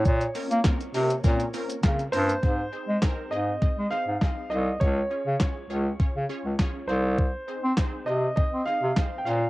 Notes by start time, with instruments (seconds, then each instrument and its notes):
Already playing: synth pluck A#3 C#4 F4 A#4, grand piano C#5
0.05 bass clarinet A#2, kick, shaker
0.21 closed hi-hat, shaker
0.35 synth pluck A#3 C4 C#4 F4 A#4, open hi-hat, shaker
0.51 bass clarinet A#3, closed hi-hat, shaker
0.64 synth pluck A#3 C4 C#4 F4 A#4, kick, snare, clap, shaker
0.81 closed hi-hat, shaker
0.94 bass clarinet C3, synth pluck A#3 C4 C#4 F4 A#4, open hi-hat, shaker
1.10 closed hi-hat, shaker
1.24 bass clarinet A#2, synth pluck A#3 C4 C#4 F4 A#4, kick, shaker
1.40 closed hi-hat, shaker
1.54 synth pluck A#3 C4 C#4 F4 A#4, open hi-hat, shaker
1.70 closed hi-hat, shaker
1.83 bass clarinet C#3, synth pluck A#3 C4 C#4 F4 A#4, kick, snare, clap, shaker
1.99 closed hi-hat, shaker
2.12 bass clarinet G2, synth pluck A#3 C4 C#4 F4 A#4, grand piano C5, open hi-hat, shaker
2.29 closed hi-hat, shaker
2.43 bass clarinet G#2, synth pluck C4 D#4 G#4 C5, kick
2.73 synth pluck C4 D#4 G#4 C5
2.89 bass clarinet G#3
3.02 synth pluck C4 D#4 G#4 A#4, kick, snare, clap
3.31 bass clarinet G#2, synth pluck C4 D#4 G#4 D#5, grand piano D#5
3.62 bass clarinet G#3, synth pluck C4 D#4 G#4 D#5, kick
3.78 bass clarinet G#3
3.90 synth pluck C4 D#4 G#4 C5, grand piano F5
4.08 bass clarinet G#2
4.21 synth pluck C4 D#4 G#4 D#5, kick, snare, clap
4.50 bass clarinet C2, synth pluck C4 D#4 G#4 C5, grand piano D#5
4.80 bass clarinet C#2, synth pluck C#4 F4 G#4 C#5, grand piano C#5, kick
5.10 synth pluck C#4 F4 G#4 C#5
5.26 bass clarinet C#3
5.40 synth pluck C#4 F4 G#4 C#5, kick, snare, clap
5.70 bass clarinet C#2, synth pluck C#4 F4 G#4 C#5
5.99 bass clarinet C#3, synth pluck C#4 F4 G#4 C#5, kick
6.15 bass clarinet C#3
6.29 synth pluck C#4 F4 G#4 C#5
6.45 bass clarinet C#2
6.59 synth pluck C#4 F4 G#4 C#5, kick, snare, clap
6.88 bass clarinet C2, synth pluck C4 D#4 G#4 C5, grand piano C5
7.18 kick
7.48 synth pluck C4 D#4 G#4 C5
7.64 bass clarinet C4
7.77 synth pluck C4 D#4 G#4 C5, kick, snare, clap
8.06 bass clarinet C3, synth pluck C4 D#4 G#4 C5, grand piano D#5
8.36 synth pluck C4 D#4 G#4 C5, bass clarinet C4, grand piano D#5, kick
8.53 bass clarinet C4
8.66 synth pluck C4 D#4 G#4 D#5, grand piano F5
8.83 bass clarinet C3
8.96 synth pluck C4 D#4 G#4 C5, kick, snare, clap
9.18 grand piano G5
9.25 bass clarinet A#2, synth pluck C#4 F4 A#4 C5, grand piano F5